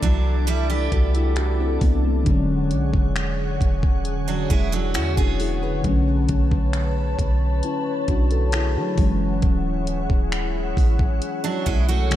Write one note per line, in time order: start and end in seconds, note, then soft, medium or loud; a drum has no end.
0.00 0.89 C2 loud
0.00 2.21 E3 medium
0.00 0.45 F#3 medium
0.00 2.22 G3 medium
0.00 0.89 A3 medium
0.00 0.90 D4 medium
0.00 2.23 D4 medium
0.00 0.45 D4 medium
0.00 2.23 E4 medium
0.00 2.23 A4 medium
0.00 2.23 D5 medium
0.00 kick medium
0.00 closed hi-hat medium
0.47 0.69 G3 medium
0.47 0.69 E4 medium
0.47 closed hi-hat medium
0.70 2.00 B3 medium
0.70 2.00 G4 medium
0.92 1.78 C2 loud
0.92 1.14 F#4 medium
0.92 1.14 A4 medium
0.92 kick loud
0.92 closed hi-hat soft
1.15 1.36 E4 medium
1.15 1.36 G4 medium
1.15 closed hi-hat soft
1.36 1.59 D4 medium
1.36 1.58 F#4 medium
1.36 finger snap loud
1.36 closed hi-hat medium
1.60 1.81 C4 medium
1.60 1.81 E4 medium
1.81 2.25 C2 loud
1.81 2.04 B3 medium
1.81 2.04 D4 medium
1.81 kick loud
1.81 open hi-hat medium
2.05 2.47 A3 medium
2.05 2.47 C4 medium
2.24 2.73 E1 loud
2.24 4.90 D3 medium
2.24 8.94 D3 medium
2.24 4.91 F#3 medium
2.24 5.81 G#4 medium
2.24 12.08 C#5 medium
2.24 5.81 F#5 medium
2.24 kick loud
2.24 closed hi-hat medium
2.28 4.92 G#3 medium
2.28 4.93 C#4 medium
2.71 2.93 B1 loud
2.71 closed hi-hat medium
2.94 3.58 E1 loud
2.94 kick medium
3.16 finger snap loud
3.16 closed hi-hat medium
3.61 4.47 E1 loud
3.61 kick medium
3.61 closed hi-hat medium
3.83 kick loud
4.05 closed hi-hat medium
4.28 4.49 F#3 medium
4.28 4.49 D4 medium
4.50 4.97 E1 loud
4.50 4.72 G#3 medium
4.50 4.71 E4 medium
4.50 kick medium
4.50 closed hi-hat soft
4.72 4.94 F#3 medium
4.72 4.94 D4 medium
4.72 closed hi-hat soft
4.94 5.17 E2 medium
4.94 5.17 C#4 medium
4.94 5.17 E4 medium
4.94 5.16 F#4 medium
4.94 finger snap loud
4.94 closed hi-hat medium
5.17 5.82 E1 loud
5.17 5.82 B3 medium
5.17 5.39 D4 medium
5.17 5.39 F#4 medium
5.17 5.81 G#4 medium
5.17 kick medium
5.40 5.62 E4 medium
5.40 5.62 G#4 medium
5.40 open hi-hat medium
5.63 6.05 G#4 medium
5.63 6.05 B4 medium
5.82 6.28 B1 loud
5.82 8.93 D3 medium
5.82 8.94 F#3 medium
5.82 8.95 B4 medium
5.82 8.95 A5 medium
5.82 kick loud
5.82 closed hi-hat medium
5.86 8.95 A3 medium
5.86 7.62 C#4 medium
6.29 7.15 B1 loud
6.29 kick medium
6.29 closed hi-hat medium
6.51 kick medium
6.73 finger snap loud
6.73 closed hi-hat medium
7.19 7.62 B1 loud
7.19 kick medium
7.19 closed hi-hat medium
7.63 8.07 C#4 medium
7.63 8.07 E4 medium
7.63 closed hi-hat medium
8.08 8.78 B1 loud
8.08 8.31 D4 medium
8.08 8.30 F#4 medium
8.08 kick medium
8.08 closed hi-hat soft
8.31 8.53 F#4 medium
8.31 8.52 A4 medium
8.31 closed hi-hat soft
8.52 8.75 E4 medium
8.52 8.75 G#4 medium
8.52 finger snap loud
8.52 closed hi-hat medium
8.76 8.97 F#3 loud
8.76 9.19 D4 medium
8.76 9.19 F#4 medium
8.96 9.41 F#1 loud
8.96 12.06 E3 medium
8.96 12.07 F#3 medium
8.96 12.09 E4 medium
8.96 12.09 G#4 medium
8.96 12.16 F#5 medium
8.96 kick loud
8.96 open hi-hat medium
9.00 12.09 G#3 medium
9.00 12.10 C#4 medium
9.42 10.07 D1 loud
9.42 kick loud
9.42 closed hi-hat medium
9.87 closed hi-hat medium
10.10 10.74 D1 loud
10.10 kick medium
10.32 finger snap loud
10.32 closed hi-hat medium
10.77 11.20 A1 loud
10.77 kick medium
10.77 open hi-hat soft
10.99 kick medium
11.22 closed hi-hat medium
11.44 11.66 F#3 medium
11.44 11.65 D4 medium
11.66 12.16 B1 loud
11.66 11.88 G#3 medium
11.66 11.88 E4 medium
11.66 kick loud
11.66 closed hi-hat medium
11.89 12.16 A3 medium
11.89 12.16 F#4 medium
12.10 12.16 D3 medium
12.10 12.16 F#3 medium
12.10 12.16 A3 medium
12.10 12.16 A4 medium
12.10 12.16 B4 medium
12.10 finger snap loud
12.10 closed hi-hat medium